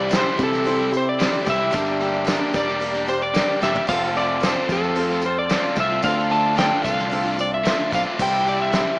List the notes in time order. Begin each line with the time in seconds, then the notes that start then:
Already playing: C2 C3 E3 G3 C4 E4 G4 D5 E5 C6
0.09 C3 E3 G3 C4 E4 G4 C5, snare, open hi-hat, tambourine
0.13 C4 E4 C5
0.25 G3 C4 E4
0.37 C3 E3 G3 C4 E4 G4, kick, open hi-hat, tambourine
0.43 A4
0.52 G3 C4 E4, snare, tambourine
0.64 G3 C4 E4 G4 C5, open hi-hat, tambourine
0.78 G3 C4 E4
0.91 C4 E4 G4, muted overdriven electric guitar stroke, open hi-hat, tambourine
0.97 C5
1.09 D5
1.19 C3 E3 G3 C4 E4 G4 C5, snare, open hi-hat, tambourine
1.32 G3 C4 E4, tambourine
1.45 C2 E3 G3 C4 E4 G4, kick, open hi-hat, tambourine
1.50 E5
1.59 G3 C4 E4
1.71 G1 G2 D3 G3 A#3 D4 G4 A#4 D5 A#5, kick, open hi-hat, tambourine
1.75 G4
1.86 tambourine
2.00 G3 A#3 D4 G4, open hi-hat, tambourine
2.14 tambourine
2.25 G2 D3 G3 A#3 D4 G4 A#4 D5, snare, open hi-hat, tambourine
2.40 G3 A#3 D4 G4
2.53 E1 G3 A#3 D4 G4 D5, kick, open hi-hat, tambourine
2.67 G3 A#3 D4 G4, snare
2.80 G3 A#3 D4 G4 A#4 D5, open hi-hat, tambourine
2.94 G3 A#3 D4 G4, tambourine
3.07 G3 A#3 D4 G4 C5, muted overdriven electric guitar stroke, open hi-hat, tambourine
3.21 D5, tambourine
3.33 G2 D3 G3 A#3 D4 G4 A#4 D5, snare, open hi-hat, tambourine
3.48 G3 A#3 D4 G4
3.61 E1 G3 A#3 D4 G4 E5, snare, tambourine
3.65 G4
3.74 G3 A#3 D4 G4, floor tom, tambourine
3.87 F1 F2 C3 F3 A3 C4 F4 A4 C5 F5 A5, kick, crash, tambourine
4.15 F3 A3 C4 F4 D5, open hi-hat, tambourine
4.40 F2 C3 F3 A3 C4 F4 A4 D5, snare, open hi-hat, tambourine
4.45 F4 C5
4.56 F3 A3 C4 F4
4.68 F2 F3 A3 C4 F4 A4, kick, open hi-hat, tambourine
4.72 C4 F4
4.82 F3 A3 C4 F4, tambourine
4.95 F3 C4 F4 A4 C5, open hi-hat, tambourine
5.09 F3 A3 C4 F4
5.22 F4 A4, muted overdriven electric guitar stroke, open hi-hat, tambourine
5.26 C4 C5
5.39 D5
5.49 F2 C3 F3 A3 C4 F4 A4 C5, snare, open hi-hat, tambourine
5.53 F4
5.63 F3 A3 C4 F4, tambourine
5.75 C2 F3 A3 C4 F4 A4, kick, open hi-hat, tambourine
5.80 E5
5.89 F3 A3 C4 F4
6.02 D2 D3 F3 A3 C4 D4 F4 A4 C5 D5 F5 C6, kick, open hi-hat, tambourine
6.30 D3 A3 D4 F4 A5, open hi-hat, tambourine
6.55 D3 F3 A3 C4 D4 F4 A4 G5, snare, open hi-hat, tambourine
6.59 D5
6.69 A3 D4 F4
6.83 C2 D3 A3 C4 D4 F4 A4 F5, kick, open hi-hat, tambourine
6.97 A3 D4 F4, snare, tambourine
7.10 F3 C4 D4 F4 A4 C5, open hi-hat, tambourine
7.24 A3 D4 F4
7.36 C4 D4 A4, muted overdriven electric guitar stroke, open hi-hat, tambourine
7.41 D5
7.54 E5
7.64 D3 A3 D4 F4 A4 C5, snare, open hi-hat, tambourine
7.78 A3 D4 F4
7.91 B1 D3 A3 C4 D4 F4 A4 F5, kick, open hi-hat, tambourine
8.05 A3 D4 F4
8.18 C2 C3 E3 G3 C4 E4 G4 C5 E5 G5 C6, kick, tambourine, crash
8.45 E3 G3 C4 E4, open hi-hat, tambourine
8.49 D5
8.62 E5
8.71 C3 E3 G3 C4 E4 G4 C5, snare, open hi-hat, tambourine
8.86 G3 C4 E4